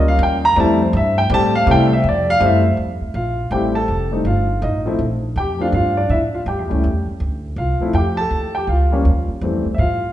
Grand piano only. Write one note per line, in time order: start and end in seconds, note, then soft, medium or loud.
0.00 0.38 G3 medium
0.00 0.38 A#3 medium
0.00 0.39 C#4 medium
0.00 0.39 F4 medium
0.08 0.20 F5 loud
0.23 0.44 G5 medium
0.45 0.57 A#5 loud
0.56 0.77 G3 medium
0.56 0.78 A3 medium
0.56 0.78 C4 medium
0.56 0.78 E4 medium
0.56 0.81 A5 medium
0.82 0.94 C5 medium
0.97 1.18 E5 medium
1.18 1.30 G5 loud
1.30 1.51 G3 medium
1.30 1.51 A3 medium
1.30 1.52 C4 medium
1.30 1.52 G4 medium
1.30 1.55 A5 loud
1.55 1.67 F5 loud
1.66 1.88 G3 medium
1.66 1.88 A3 medium
1.66 1.88 C4 medium
1.66 1.89 E4 medium
1.71 1.92 G5 loud
1.93 2.05 E5 loud
2.09 2.29 D5 medium
2.30 2.42 F5 loud
2.40 2.61 G3 medium
2.40 2.62 A3 medium
2.40 2.62 C4 medium
2.40 2.62 E4 medium
2.46 2.72 E5 medium
3.15 3.50 F4 medium
3.15 3.53 F5 medium
3.51 3.73 G3 medium
3.51 3.73 A3 medium
3.51 3.73 C4 medium
3.51 3.74 E4 medium
3.51 3.75 G4 medium
3.51 3.76 G5 medium
3.75 4.11 A4 medium
3.75 4.10 A5 medium
4.12 4.24 G3 medium
4.12 4.24 A3 medium
4.12 4.24 C4 soft
4.12 4.24 D#4 medium
4.27 4.61 F4 medium
4.27 4.64 F5 medium
4.63 4.92 D#4 medium
4.63 4.91 D#5 medium
4.85 4.98 F3 medium
4.85 4.98 A3 medium
4.85 4.98 C4 medium
4.85 4.98 E4 medium
5.38 5.60 G4 medium
5.38 5.61 G5 medium
5.59 5.72 F3 medium
5.59 5.72 A3 soft
5.59 5.72 C4 medium
5.59 5.72 D4 medium
5.59 5.68 F4 medium
5.59 5.66 F5 medium
5.74 5.96 F4 medium
5.74 5.98 F5 medium
5.97 6.10 D4 medium
5.97 6.11 D5 medium
6.10 6.17 E4 medium
6.10 6.16 E5 medium
6.34 6.40 F4 medium
6.34 6.39 F5 medium
6.48 7.04 G4 medium
6.48 7.04 G5 medium
6.69 6.82 G3 medium
6.69 6.82 A3 medium
6.69 6.83 C#4 medium
6.69 6.83 E4 medium
7.58 7.93 F4 medium
7.58 7.96 F5 medium
7.80 7.93 F3 medium
7.80 7.93 A3 medium
7.80 7.93 C4 medium
7.80 7.94 E4 medium
7.95 8.18 G4 medium
7.95 8.19 G5 medium
8.17 8.54 A4 medium
8.17 8.56 A5 loud
8.55 8.69 G4 medium
8.55 8.67 G5 medium
8.69 9.26 F4 medium
8.69 9.25 F5 medium
8.91 9.04 F3 medium
8.91 9.04 G3 medium
8.91 9.04 A#3 medium
8.91 9.05 C#4 medium
9.42 9.63 E3 medium
9.42 9.63 G3 medium
9.42 9.64 A3 medium
9.42 9.64 C4 medium
9.74 9.79 E5 medium
9.79 10.12 F4 medium
9.79 10.12 F5 medium